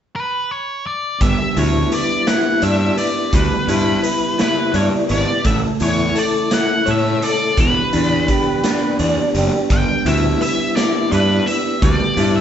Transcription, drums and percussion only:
1.21 kick, closed hi-hat
1.57 closed hi-hat
1.92 closed hi-hat
2.27 snare, closed hi-hat
2.62 closed hi-hat
2.98 closed hi-hat
3.33 kick, closed hi-hat
3.68 closed hi-hat
4.04 closed hi-hat
4.39 snare, closed hi-hat
4.74 closed hi-hat
5.09 closed hi-hat
5.44 kick, closed hi-hat
5.80 closed hi-hat
6.16 closed hi-hat
6.51 snare, closed hi-hat
6.86 closed hi-hat
7.22 closed hi-hat
7.57 kick, closed hi-hat
7.93 closed hi-hat
8.28 kick, closed hi-hat
8.64 snare, closed hi-hat
8.99 closed hi-hat
9.35 closed hi-hat
9.70 kick, closed hi-hat
10.06 closed hi-hat
10.41 closed hi-hat
10.77 snare, closed hi-hat
11.12 closed hi-hat
11.47 closed hi-hat
11.82 kick, closed hi-hat
12.17 closed hi-hat

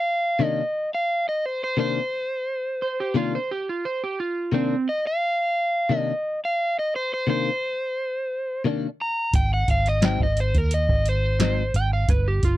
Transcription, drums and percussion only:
9.34 kick, closed hi-hat
9.68 kick, closed hi-hat
9.86 closed hi-hat
10.02 snare, closed hi-hat
10.20 kick
10.37 closed hi-hat
10.55 kick, closed hi-hat
10.71 closed hi-hat
10.89 kick
11.06 closed hi-hat
11.40 snare, closed hi-hat
11.74 closed hi-hat
12.09 kick, closed hi-hat
12.43 kick, closed hi-hat

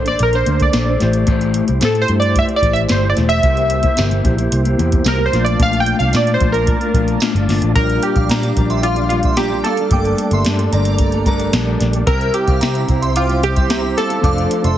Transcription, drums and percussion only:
0.06 closed hi-hat
0.19 closed hi-hat
0.33 closed hi-hat
0.46 closed hi-hat
0.60 kick, closed hi-hat
0.73 snare, closed hi-hat, tambourine
1.00 snare, closed hi-hat
1.13 closed hi-hat
1.27 kick, closed hi-hat
1.41 closed hi-hat
1.54 closed hi-hat
1.68 closed hi-hat
1.81 snare, closed hi-hat, tambourine
1.95 closed hi-hat
2.08 closed hi-hat
2.22 closed hi-hat
2.36 kick, closed hi-hat
2.49 closed hi-hat
2.62 kick, closed hi-hat
2.76 closed hi-hat
2.89 snare, closed hi-hat, tambourine
3.17 snare, closed hi-hat
3.30 closed hi-hat
3.43 kick, closed hi-hat
3.57 closed hi-hat
3.70 closed hi-hat
3.83 kick, closed hi-hat
3.97 snare, closed hi-hat, tambourine
4.11 closed hi-hat
4.25 kick, closed hi-hat
4.38 closed hi-hat
4.52 closed hi-hat
4.65 closed hi-hat
4.79 closed hi-hat
4.92 kick, closed hi-hat
5.04 snare, closed hi-hat, tambourine
5.33 snare, closed hi-hat
5.46 closed hi-hat
5.59 kick, closed hi-hat
5.73 closed hi-hat
5.86 closed hi-hat
6.00 closed hi-hat
6.13 snare, closed hi-hat, tambourine
6.27 closed hi-hat
6.41 kick, closed hi-hat
6.54 closed hi-hat
6.67 kick, closed hi-hat
6.81 closed hi-hat
6.94 kick, closed hi-hat
7.08 closed hi-hat
7.20 snare, closed hi-hat, tambourine
7.36 closed hi-hat
7.49 snare, open hi-hat
7.62 closed hi-hat
7.75 kick, closed hi-hat
7.90 closed hi-hat
8.03 closed hi-hat
8.16 kick, closed hi-hat
8.29 snare, closed hi-hat
8.43 closed hi-hat
8.57 kick, closed hi-hat
8.70 closed hi-hat
8.83 closed hi-hat
8.96 closed hi-hat
9.10 closed hi-hat
9.23 kick, closed hi-hat
9.37 snare, closed hi-hat
9.65 snare, closed hi-hat
9.77 closed hi-hat
9.91 kick, closed hi-hat
10.05 closed hi-hat
10.18 closed hi-hat
10.31 closed hi-hat
10.45 snare, closed hi-hat
10.59 closed hi-hat
10.73 closed hi-hat
10.85 closed hi-hat
10.98 kick, closed hi-hat
11.12 closed hi-hat
11.26 kick, closed hi-hat
11.40 closed hi-hat
11.53 snare, closed hi-hat
11.81 snare, closed hi-hat
11.93 closed hi-hat
12.07 kick, closed hi-hat
12.21 closed hi-hat
12.34 closed hi-hat
12.48 kick, closed hi-hat
12.61 snare, closed hi-hat
12.75 closed hi-hat
12.89 kick, closed hi-hat
13.03 closed hi-hat
13.16 closed hi-hat
13.29 closed hi-hat
13.43 closed hi-hat
13.56 kick, closed hi-hat
13.70 snare, closed hi-hat
13.98 snare, closed hi-hat
14.10 closed hi-hat
14.24 kick, closed hi-hat
14.38 closed hi-hat
14.51 closed hi-hat
14.64 closed hi-hat

